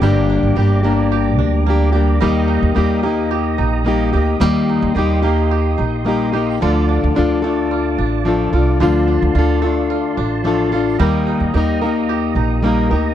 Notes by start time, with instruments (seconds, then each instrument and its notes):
Already playing: five-string banjo A#3 D4 G4, tonewheel organ G4 D5 A#5 D6
0.01 upright bass G1, steel-string acoustic guitar G2 D3 G3 A#3 D4 G4, five-string banjo G3 G4
0.30 five-string banjo D4
0.43 upright bass G1
0.56 upright bass G1, steel-string acoustic guitar G3 A#3 D4 G4, five-string banjo G4
0.83 steel-string acoustic guitar G3 A#3 D4 G4, five-string banjo A#3
1.12 five-string banjo G4
1.39 upright bass D2, five-string banjo D4
1.66 steel-string acoustic guitar G3 A#3 D4 G4, five-string banjo A#3
1.92 steel-string acoustic guitar A#3 D4 G4, five-string banjo G4
1.96 steel-string acoustic guitar G3
2.20 upright bass D#2, steel-string acoustic guitar D#3 G3 A#3 D#4 G4, five-string banjo G3 G4, tonewheel organ D#5 D#6
2.48 five-string banjo D#4
2.62 upright bass D#2
2.75 upright bass D#2, steel-string acoustic guitar G3 A#3 D#4 G4, five-string banjo G4
3.03 five-string banjo A#3, steel-string acoustic guitar A#3 D#4 G4
3.31 five-string banjo G4
3.58 upright bass A#1, five-string banjo D#4
3.85 steel-string acoustic guitar G3 A#3 D#4 G4, five-string banjo A#3
4.13 upright bass D2, steel-string acoustic guitar A#3 D#4 G4, five-string banjo G4
4.40 upright bass D#2, steel-string acoustic guitar D#3 G3 A#3 D#4 G4, five-string banjo G3 G4, tonewheel organ C6
4.69 five-string banjo D#4
4.82 upright bass D#2
4.95 upright bass D#2, steel-string acoustic guitar G3 A#3 D#4 G4, five-string banjo G4
5.22 five-string banjo A#3, steel-string acoustic guitar A#3 D#4 G4
5.51 five-string banjo G4
5.78 upright bass A#1, five-string banjo D#4
6.05 steel-string acoustic guitar G3 A#3 D#4 G4, five-string banjo A#3
6.32 steel-string acoustic guitar A#3 D#4 G4, five-string banjo G4
6.60 upright bass D2, steel-string acoustic guitar D3 F3 D4 F4 A4, five-string banjo D3 F4, tonewheel organ F4 D5 A5 D6
6.89 five-string banjo D4
7.03 upright bass D2
7.15 upright bass D2, steel-string acoustic guitar F3 D4 F4 A4, five-string banjo F4
7.42 five-string banjo A3, steel-string acoustic guitar D4 F4 A4
7.71 five-string banjo F4
7.98 upright bass A1, five-string banjo D4
8.25 steel-string acoustic guitar F3 D4 F4 A4, five-string banjo A3
8.53 upright bass C2, steel-string acoustic guitar D4 F4 A4, five-string banjo F4
8.80 upright bass D2, steel-string acoustic guitar D3 F3 D4 F4 A4, five-string banjo D3 F4, tonewheel organ C6
9.08 five-string banjo D4
9.22 upright bass D2
9.35 upright bass D2, steel-string acoustic guitar F3 D4 F4 A4, five-string banjo F4
9.62 five-string banjo A3, steel-string acoustic guitar F4 A4
9.66 steel-string acoustic guitar D4
9.90 five-string banjo F4
10.17 upright bass A1, five-string banjo D4
10.44 steel-string acoustic guitar F3 D4 F4 A4, five-string banjo A3
10.72 steel-string acoustic guitar D4 F4 A4, five-string banjo F4
10.98 upright bass D#2, steel-string acoustic guitar D#3 G3 A#3 D#4, five-string banjo G3 G4, tonewheel organ G4 D#5 A#5 D#6
11.02 steel-string acoustic guitar A#4
11.27 five-string banjo D#4
11.40 upright bass D#2
11.54 upright bass D#2, steel-string acoustic guitar G3 A#3 D#4 A#4, five-string banjo G4
11.81 five-string banjo A#3, steel-string acoustic guitar A#3 D#4 A#4
12.09 five-string banjo G4
12.35 upright bass A#1, five-string banjo D#4
12.62 steel-string acoustic guitar G3 A#3 D#4 A#4, five-string banjo A#3
12.91 upright bass D2, steel-string acoustic guitar A#3 D#4 A#4, five-string banjo G4